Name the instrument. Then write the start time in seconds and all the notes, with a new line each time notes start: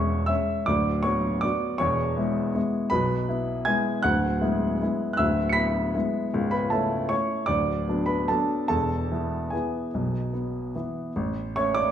grand piano
Already playing: E1 E2 G#3 C#4 C#5 E5 C#6 E6
0.26 G#3 C#4 E5 E6
0.66 D1 D2 D5 D6
1.03 F#3 B3 F#4 C#5 C#6
1.41 F#3 B3 F#4 D5 D6
1.78 E1 E2 C#5 C#6
2.17 G#3 B3 E4
2.55 G#3 B3 E4
2.90 B1 B2 B4 B5
3.29 B3 E4
3.65 G#3 B3 E4 G#5 G#6
4.03 D1 D2 F#5 F#6
4.41 G#3 B3 E4
4.81 G#3 B3 E4
5.13 E6 F#6
5.19 D1 D2 E5
5.49 B5 B6 C#7
5.55 B3 E4
5.95 G#3 B3 E4
6.34 C#1 C#2
6.51 B4 B5
6.70 A3 C#4 E4 A4 A5
7.09 A3 C#4 E4 C#5 C#6
7.46 D1 D2 D5 D6
7.88 F#3 B3 D4
8.06 B4 B5
8.28 F#3 B3 D4 A4 A5
8.68 E1 E2 A4 A5
9.12 E3 B3
9.50 E3 B3 G#4 G#5
9.94 B1 B2
10.33 B3
10.75 E3 B3
11.16 A1
11.56 A3 C#4 C#5 C#6
11.75 D5 D6